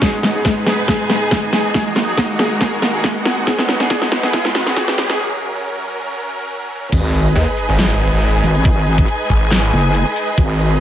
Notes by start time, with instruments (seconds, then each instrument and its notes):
Already playing: string section C#4 F#4 F#5
0.02 supersaw synth G#2 G#3 B3 D#4 G#4, string section D#4, kick, snare, closed hi-hat, riser
0.13 supersaw synth G#3
0.20 supersaw synth G#3, string section B4, snare, closed hi-hat
0.35 supersaw synth G#4, string section G#4, closed hi-hat
0.45 supersaw synth G#3, string section G#5, kick, snare, closed hi-hat
0.56 supersaw synth G#3
0.66 supersaw synth G#4, snare, open hi-hat
0.78 supersaw synth G#3
0.88 supersaw synth G#4, kick, snare, closed hi-hat
1.00 supersaw synth G#3
1.10 supersaw synth G#3, snare, closed hi-hat
1.21 supersaw synth G#4
1.31 supersaw synth G#3, kick, snare, closed hi-hat
1.43 supersaw synth G#3
1.53 supersaw synth G#4, snare, open hi-hat
1.64 supersaw synth G#3, closed hi-hat
1.74 supersaw synth D#2 D#3 A#3 F#4 G#4, kick, snare, closed hi-hat
1.85 supersaw synth G#3, string section F#4
1.96 supersaw synth G#3, snare, closed hi-hat
2.07 supersaw synth G#4, closed hi-hat
2.17 supersaw synth G#3, string section F#5, kick, snare, closed hi-hat
2.27 supersaw synth G#3, string section A#4
2.39 supersaw synth G#4, snare, open hi-hat
2.51 supersaw synth G#3
2.61 supersaw synth G#4, kick, snare, closed hi-hat
2.72 supersaw synth G#3
2.82 supersaw synth G#3, snare, closed hi-hat
2.94 supersaw synth G#4
3.04 supersaw synth G#3, kick, snare, closed hi-hat
3.15 supersaw synth G#3
3.25 supersaw synth G#4, snare, open hi-hat
3.37 supersaw synth G#3, closed hi-hat
3.47 supersaw synth B2 F#3 D#4 G#4 B4, kick, snare, closed hi-hat
3.58 supersaw synth G#3, snare
3.69 supersaw synth G#3, snare, closed hi-hat
3.80 supersaw synth G#4, snare, closed hi-hat
3.90 supersaw synth G#4, kick, snare, closed hi-hat
4.02 supersaw synth G#3, string section B4, snare
4.12 supersaw synth G#3, snare, open hi-hat
4.23 supersaw synth G#4, snare
4.33 supersaw synth G#4, kick, snare, closed hi-hat
4.45 supersaw synth G#3, snare
4.55 supersaw synth G#3, snare, closed hi-hat
4.66 supersaw synth G#4, snare
4.76 supersaw synth G#4, kick, snare, closed hi-hat
4.88 supersaw synth G#3, snare
4.98 supersaw synth G#3, snare, open hi-hat
5.09 supersaw synth G#4, snare, closed hi-hat
5.20 supersaw synth F#2 C#4 A#4
6.92 wobble bass G#1, supersaw synth G#3 G#4 B4 D#5, string section D#4, kick, closed hi-hat, crash, sub drop
7.06 string section B4
7.14 closed hi-hat
7.19 string section G#4
7.25 closed hi-hat
7.36 detuned saw bass D#2, closed hi-hat
7.55 string section G#5, open hi-hat
7.69 detuned saw bass G#1
7.79 snare, clap, closed hi-hat
8.00 closed hi-hat
8.12 detuned saw bass G#1
8.22 closed hi-hat
8.43 wobble bass G#1, open hi-hat
8.55 closed hi-hat
8.65 kick, closed hi-hat
8.87 closed hi-hat
8.98 kick, closed hi-hat
9.08 closed hi-hat
9.30 detuned saw bass G#1, kick, open hi-hat
9.51 snare, clap, closed hi-hat
9.73 wobble bass F#1, closed hi-hat
9.95 closed hi-hat
10.16 open hi-hat
10.28 closed hi-hat
10.38 wobble bass G#1, kick, closed hi-hat
10.59 closed hi-hat
10.71 closed hi-hat